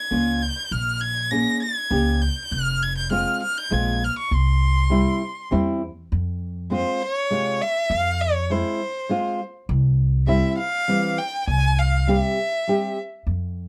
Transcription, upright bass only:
0, 0, Header, 1, 2, 480
1, 0, Start_track
1, 0, Tempo, 597610
1, 576, Time_signature, 3, 2, 24, 8
1, 10989, End_track
2, 0, Start_track
2, 0, Title_t, "Upright bass"
2, 0, Program_c, 0, 32
2, 91, Note_on_c, 0, 37, 69
2, 381, Note_off_c, 0, 37, 0
2, 574, Note_on_c, 0, 34, 77
2, 1154, Note_off_c, 0, 34, 0
2, 1532, Note_on_c, 0, 37, 86
2, 1824, Note_off_c, 0, 37, 0
2, 2019, Note_on_c, 0, 29, 69
2, 2598, Note_off_c, 0, 29, 0
2, 2986, Note_on_c, 0, 34, 90
2, 3274, Note_off_c, 0, 34, 0
2, 3465, Note_on_c, 0, 36, 89
2, 4041, Note_off_c, 0, 36, 0
2, 4435, Note_on_c, 0, 40, 89
2, 4721, Note_off_c, 0, 40, 0
2, 4915, Note_on_c, 0, 41, 80
2, 5488, Note_off_c, 0, 41, 0
2, 6344, Note_on_c, 0, 41, 85
2, 6919, Note_off_c, 0, 41, 0
2, 7783, Note_on_c, 0, 36, 94
2, 8357, Note_off_c, 0, 36, 0
2, 9217, Note_on_c, 0, 36, 83
2, 9792, Note_off_c, 0, 36, 0
2, 10655, Note_on_c, 0, 41, 76
2, 10989, Note_off_c, 0, 41, 0
2, 10989, End_track
0, 0, End_of_file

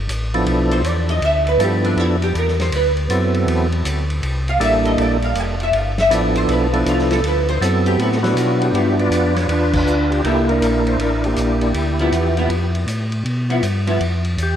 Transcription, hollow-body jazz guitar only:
0, 0, Header, 1, 2, 480
1, 0, Start_track
1, 0, Tempo, 375940
1, 1555, Time_signature, 4, 2, 24, 8
1, 18595, End_track
2, 0, Start_track
2, 0, Title_t, "Hollow-body jazz guitar"
2, 0, Program_c, 0, 26
2, 920, Note_on_c, 0, 72, 89
2, 1116, Note_off_c, 0, 72, 0
2, 1116, Note_on_c, 0, 74, 86
2, 1400, Note_off_c, 0, 74, 0
2, 1406, Note_on_c, 0, 75, 88
2, 1559, Note_off_c, 0, 75, 0
2, 1593, Note_on_c, 0, 76, 92
2, 1878, Note_off_c, 0, 76, 0
2, 1898, Note_on_c, 0, 71, 83
2, 2046, Note_off_c, 0, 71, 0
2, 2091, Note_on_c, 0, 67, 73
2, 2367, Note_off_c, 0, 67, 0
2, 2367, Note_on_c, 0, 62, 76
2, 2547, Note_off_c, 0, 62, 0
2, 2547, Note_on_c, 0, 64, 70
2, 2835, Note_off_c, 0, 64, 0
2, 2855, Note_on_c, 0, 67, 83
2, 3003, Note_off_c, 0, 67, 0
2, 3048, Note_on_c, 0, 70, 73
2, 3326, Note_off_c, 0, 70, 0
2, 3338, Note_on_c, 0, 72, 85
2, 3485, Note_off_c, 0, 72, 0
2, 3519, Note_on_c, 0, 71, 77
2, 3944, Note_off_c, 0, 71, 0
2, 5735, Note_on_c, 0, 77, 92
2, 5884, Note_off_c, 0, 77, 0
2, 5919, Note_on_c, 0, 76, 81
2, 6201, Note_off_c, 0, 76, 0
2, 6211, Note_on_c, 0, 75, 83
2, 6361, Note_off_c, 0, 75, 0
2, 6404, Note_on_c, 0, 74, 78
2, 6684, Note_off_c, 0, 74, 0
2, 6695, Note_on_c, 0, 77, 83
2, 6887, Note_off_c, 0, 77, 0
2, 6887, Note_on_c, 0, 79, 104
2, 7165, Note_off_c, 0, 79, 0
2, 7190, Note_on_c, 0, 76, 84
2, 7360, Note_off_c, 0, 76, 0
2, 7360, Note_on_c, 0, 77, 92
2, 7642, Note_off_c, 0, 77, 0
2, 7662, Note_on_c, 0, 76, 101
2, 7852, Note_off_c, 0, 76, 0
2, 7852, Note_on_c, 0, 74, 81
2, 8127, Note_off_c, 0, 74, 0
2, 8131, Note_on_c, 0, 72, 96
2, 8282, Note_off_c, 0, 72, 0
2, 8319, Note_on_c, 0, 71, 79
2, 8601, Note_off_c, 0, 71, 0
2, 8618, Note_on_c, 0, 62, 53
2, 8765, Note_off_c, 0, 62, 0
2, 8797, Note_on_c, 0, 65, 79
2, 9080, Note_off_c, 0, 65, 0
2, 9091, Note_on_c, 0, 69, 85
2, 9241, Note_off_c, 0, 69, 0
2, 9280, Note_on_c, 0, 71, 78
2, 9561, Note_off_c, 0, 71, 0
2, 9568, Note_on_c, 0, 72, 103
2, 9720, Note_off_c, 0, 72, 0
2, 9761, Note_on_c, 0, 69, 75
2, 10042, Note_off_c, 0, 69, 0
2, 10047, Note_on_c, 0, 67, 88
2, 10199, Note_off_c, 0, 67, 0
2, 10236, Note_on_c, 0, 66, 77
2, 11041, Note_off_c, 0, 66, 0
2, 11156, Note_on_c, 0, 53, 54
2, 11163, Note_on_c, 0, 59, 58
2, 11175, Note_on_c, 0, 64, 55
2, 11437, Note_off_c, 0, 53, 0
2, 11440, Note_off_c, 0, 59, 0
2, 11446, Note_off_c, 0, 64, 0
2, 13081, Note_on_c, 0, 58, 48
2, 13091, Note_on_c, 0, 64, 61
2, 13096, Note_on_c, 0, 69, 60
2, 13360, Note_off_c, 0, 58, 0
2, 13365, Note_off_c, 0, 64, 0
2, 13367, Note_off_c, 0, 69, 0
2, 15316, Note_on_c, 0, 53, 72
2, 15329, Note_on_c, 0, 59, 79
2, 15333, Note_on_c, 0, 64, 79
2, 15762, Note_off_c, 0, 53, 0
2, 15768, Note_off_c, 0, 59, 0
2, 15770, Note_off_c, 0, 64, 0
2, 15799, Note_on_c, 0, 53, 67
2, 15806, Note_on_c, 0, 59, 75
2, 15816, Note_on_c, 0, 64, 74
2, 15945, Note_off_c, 0, 53, 0
2, 15948, Note_off_c, 0, 59, 0
2, 15953, Note_off_c, 0, 64, 0
2, 17231, Note_on_c, 0, 53, 67
2, 17238, Note_on_c, 0, 59, 78
2, 17246, Note_on_c, 0, 64, 79
2, 17382, Note_off_c, 0, 53, 0
2, 17386, Note_off_c, 0, 59, 0
2, 17390, Note_off_c, 0, 64, 0
2, 17707, Note_on_c, 0, 53, 62
2, 17709, Note_on_c, 0, 59, 65
2, 17721, Note_on_c, 0, 64, 70
2, 17860, Note_off_c, 0, 53, 0
2, 17861, Note_off_c, 0, 59, 0
2, 17867, Note_off_c, 0, 64, 0
2, 18595, End_track
0, 0, End_of_file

